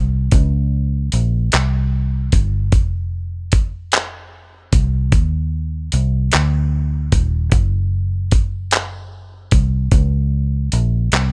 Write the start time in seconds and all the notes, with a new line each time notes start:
Already playing: C2
0.32 C#2, kick, closed hi-hat
1.12 A#1, closed hi-hat
1.52 C2, clap, closed hi-hat
2.32 G1, kick, closed hi-hat
2.72 F1, kick, closed hi-hat
3.52 kick, closed hi-hat
3.92 clap, closed hi-hat
4.73 C2, kick, closed hi-hat
5.12 D#2, kick, closed hi-hat
5.92 C2, closed hi-hat
6.32 D2, clap, closed hi-hat
7.12 D#1, kick, closed hi-hat
7.52 F#1, kick, closed hi-hat
8.31 kick, closed hi-hat
8.71 clap, closed hi-hat
9.51 C2, kick, closed hi-hat
9.91 C#2, kick, closed hi-hat
10.72 A#1, closed hi-hat
11.12 C2, clap, closed hi-hat